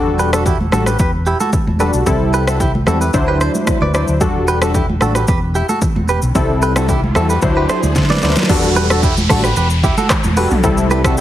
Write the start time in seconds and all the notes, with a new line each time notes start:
Already playing: E1 G3 D4 F#4 A4
0.19 G4 B4, shaker
0.33 G3 D4 F#4 A4, cross-stick, shaker
0.45 E4 G4, kick, low conga, shaker
0.61 high conga
0.72 A1 G3 D4 F#4 A4, cross-stick, high conga, low conga, shaker
0.86 G4 B4, cross-stick, shaker
0.99 E1 G4 B4, kick, shaker
1.26 E4 G4, shaker
1.40 F#4 A4, high conga, shaker
1.53 kick, low conga, shaker
1.67 E1, high conga
1.80 G3 D4 F#4 G4 A4 B4, shaker
1.93 B1, shaker
2.06 C2 G3 C4 E4 A4, kick, low conga, shaker
2.34 G4 B4, shaker
2.47 G3 C4 E4 F#4 A4, cross-stick, shaker
2.60 E4 G4, kick, low conga, shaker
2.75 high conga
2.87 E2 G3 C4 E4 F#4 A4, cross-stick, high conga, low conga, shaker
3.01 G4 B4, shaker
3.13 D2 F#3 D4 E4 C5, kick, shaker
3.28 G4 B4
3.41 A4 C5, cross-stick, shaker
3.55 high conga, shaker
3.67 kick, cross-stick, low conga, shaker
3.81 D2 B4 D5, high conga
3.94 F#3 D4 E4 B4 C5 D5, cross-stick, shaker
4.08 D2, shaker
4.21 G3 D4 F#4 A4, kick, riser, low conga, shaker
4.48 G4 B4, shaker
4.61 G3 D4 F#4 A4, cross-stick, shaker
4.74 E4 G4, kick, low conga, shaker
4.89 high conga
5.01 A1 G3 D4 F#4 A4, cross-stick, high conga, low conga, shaker
5.15 G4 B4, cross-stick, shaker
5.28 E1 G4 B4, kick, shaker
5.55 E4 G4, shaker
5.69 F#4 A4, high conga, shaker
5.82 kick, low conga, shaker
5.95 E1, high conga
6.08 G4 B4, shaker
6.22 B1, shaker
6.35 C2 G3 C4 E4 A4, kick, low conga, shaker
6.62 G4 B4, shaker
6.76 G3 C4 E4 F#4 A4, cross-stick, shaker
6.88 E4 G4, kick, low conga, shaker
7.04 high conga
7.15 E2 G3 C4 E4 F#4 A4, cross-stick, high conga, low conga, shaker
7.30 G4 B4, shaker
7.42 D2 F#3 D4 E4 C5, kick, shaker
7.57 G4 B4
7.69 A4 C5, cross-stick, shaker
7.83 D2, high conga, shaker
7.96 D3, kick, snare, low conga, shaker
8.03 snare
8.10 B4 D5, snare, high conga
8.16 snare
8.22 D2 F#3 D4 E4 B4 C5 D5, snare, shaker
8.30 snare
8.36 snare, shaker
8.43 snare
8.49 E1 G3 D4 F#4 A4, kick, crash, downlifter, low conga, shaker
8.63 high conga, shaker
8.76 G4 B4, shaker
8.90 G3 D4 F#4 A4, cross-stick, shaker
9.03 E4 G4, kick, shaker
9.17 high conga, shaker
9.29 A1 G3 D4 F#4 A4, kick, cross-stick, open hi-hat, high conga, low conga, shaker
9.44 G4 B4, cross-stick, shaker
9.56 E1 G4 B4, shaker
9.70 shaker
9.84 E4 G4, kick, shaker
9.97 F#4 A4, high conga, shaker
10.10 kick, cross-stick, clap, low conga, shaker
10.24 E1, high conga, shaker
10.37 G3 D4 F#4 G4 A4 B4, open hi-hat, shaker
10.51 B1, mid tom, shaker
10.63 C2 G3 C4 E4 A4, kick, low conga, shaker
10.78 high conga, shaker
10.91 G4 B4, shaker
11.04 G3 C4 E4 F#4 A4, kick, cross-stick, shaker
11.18 shaker